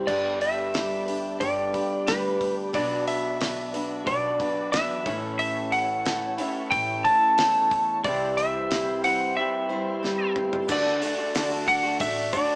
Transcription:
0.07 upright bass G1, clean electric guitar G2 D3 G3 B3 D4 G4, steel-string acoustic guitar G3 D4 G4 B4, tonewheel organ D4 G4 B4 D5, electric slide guitar D5, kick, crash
0.41 electric slide guitar E5, open hi-hat
0.72 steel-string acoustic guitar G3 D4 G4 B4, snare, open hi-hat
1.06 steel-string acoustic guitar D4 G4 B4, open hi-hat
1.40 upright bass G1, clean electric guitar G2 D3 G3 B3 D4 G4, electric slide guitar D5, kick, open hi-hat
1.73 steel-string acoustic guitar D4 G4 B4, kick, open hi-hat
2.07 upright bass D2, steel-string acoustic guitar G3 D4 G4 B4, electric slide guitar B4, snare, open hi-hat
2.41 kick, open hi-hat
2.73 upright bass B1, clean electric guitar B2 F#3 B3 D4 F#4, steel-string acoustic guitar B2 F#3 B3 D4 F#4 B4, tonewheel organ D4 F#4 B4 D5, electric slide guitar D5, kick, open hi-hat
3.07 electric slide guitar E5, open hi-hat
3.40 steel-string acoustic guitar B3 D4 F#4 B4, snare, open hi-hat
3.73 steel-string acoustic guitar B3 D4 F#4 B4, open hi-hat
4.05 upright bass B1, clean electric guitar B2 F#3 B3 D4 F#4, electric slide guitar D5, kick, open hi-hat
4.39 steel-string acoustic guitar B3 D4 F#4 B4, kick, open hi-hat
4.72 upright bass E2, steel-string acoustic guitar B3 D4 F#4 B4, electric slide guitar E5, snare, open hi-hat
5.04 upright bass A1, clean electric guitar A2 E3 A3 C#4 E4, steel-string acoustic guitar A3 C#4 E4 C#5, tonewheel organ C#4 E4 A4 C#5, kick, open hi-hat
5.08 steel-string acoustic guitar A2 E3
5.39 electric slide guitar E5, open hi-hat
5.72 electric slide guitar F#5, open hi-hat
6.05 steel-string acoustic guitar A3 C#4 E4 C#5, snare, open hi-hat
6.38 clean electric guitar A2 E3 A3 C#4 E4, steel-string acoustic guitar A3 C#4 E4 C#5, open hi-hat
6.71 upright bass A1, electric slide guitar G5, kick, open hi-hat
7.04 steel-string acoustic guitar C#4 E4 C#5, electric slide guitar A5, kick, open hi-hat
7.09 steel-string acoustic guitar A3
7.38 upright bass E2, steel-string acoustic guitar A3 C#4 E4 C#5, snare, open hi-hat
7.71 kick, open hi-hat
8.03 upright bass C2, clean electric guitar C3 E3 G3 C4 E4, steel-string acoustic guitar C3 E3 G3 C4 E4 C5, tonewheel organ C4 E4 G4 C5, electric slide guitar D5, kick, open hi-hat
8.37 electric slide guitar E5, open hi-hat
8.71 steel-string acoustic guitar G3 C4 E4 C5, snare, open hi-hat
9.03 steel-string acoustic guitar G3 C4 E4 C5, electric slide guitar F#5, open hi-hat
9.36 clean electric guitar C3 E3 G3 C4 E4, electric slide guitar E5
9.69 steel-string acoustic guitar G3 C4 E4 C5
10.03 steel-string acoustic guitar G3 C4 E4 C5, snare
10.36 tonewheel organ G3, mid tom
10.40 tonewheel organ A3 B3
10.45 tonewheel organ C4 D4
10.50 tonewheel organ E4, floor tom
10.54 tonewheel organ F4 G4
10.59 tonewheel organ A4 B4
10.64 clean electric guitar D3, steel-string acoustic guitar D3, tonewheel organ D4 F#4 A4 C5 D5
10.69 upright bass D2, steel-string acoustic guitar A3 D4 F#4 D5, clean electric guitar A3 D4 F#4, electric slide guitar D5, kick, crash, shaker
10.87 snare
11.02 clean electric guitar D3 A3 D4 F#4, steel-string acoustic guitar D4 F#4 D5, open hi-hat, shaker
11.18 clean electric guitar A3 D4 F#4
11.35 clean electric guitar D3 A3 D4 F#4, steel-string acoustic guitar D3 A3 D4 F#4 D5, snare, open hi-hat, shaker
11.51 clean electric guitar A3 D4 F#4
11.68 electric slide guitar F#5, muted clean electric guitar stroke, kick, open hi-hat, shaker
11.83 clean electric guitar A3 D4 F#4
12.00 upright bass A1, steel-string acoustic guitar A3 D4 F#4, electric slide guitar E5, kick, open hi-hat, shaker
12.04 steel-string acoustic guitar D5
12.33 upright bass D2, clean electric guitar D3 A3 D4 F#4, steel-string acoustic guitar D4 F#4 D5, electric slide guitar D5, kick, open hi-hat, shaker

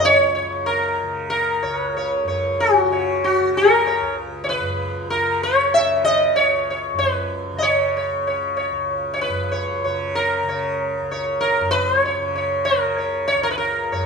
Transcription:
Already playing: tanpura C#2 F#2 C#3
0.05 sitar C#5
0.35 sitar C#5
0.46 tanpura C#3
0.66 sitar A#4
1.03 tanpura C#3
1.30 sitar A#4
1.63 tanpura C#2, sitar C#5
1.77 sitar B4
1.89 sitar A#4
1.97 sitar C#5
2.24 tanpura F#2
2.28 sitar C#5
2.60 sitar F#4
2.84 tanpura C#3
2.92 sitar C#5
3.24 sitar F#4
3.41 tanpura C#3
3.57 sitar A#4
3.86 sitar C#5
4.01 tanpura C#2
4.44 sitar C#5
4.49 sitar B4
4.60 tanpura F#2
5.10 sitar A#4
5.18 tanpura C#3
5.43 sitar C#5
5.74 sitar E5
5.79 tanpura C#3
6.05 sitar D#5
6.36 tanpura C#2, sitar C#5
6.70 sitar C#5
6.93 tanpura F#2
6.99 sitar B4
7.54 tanpura C#3
7.58 sitar C#5 D#5
7.97 sitar C#5
8.12 tanpura C#3
8.27 sitar C#5
8.57 sitar C#5
8.72 tanpura C#2
9.14 sitar C#5
9.21 sitar B4
9.28 tanpura F#2
9.52 sitar C#5
9.84 tanpura C#3, sitar C#5
10.15 sitar A#4
10.44 tanpura C#3
10.49 sitar C#5
11.02 tanpura C#2
11.11 sitar C#5
11.41 sitar A#4
11.60 tanpura F#2
11.71 sitar B4
11.89 sitar C5
12.05 sitar C#5
12.18 tanpura C#3
12.35 sitar C#5
12.65 sitar A#4
12.75 tanpura C#3
12.98 sitar C#5
13.28 sitar C#5
13.35 tanpura C#2
13.43 sitar A#4
13.51 sitar B4
13.58 sitar A#4
13.92 tanpura F#2, sitar C#5

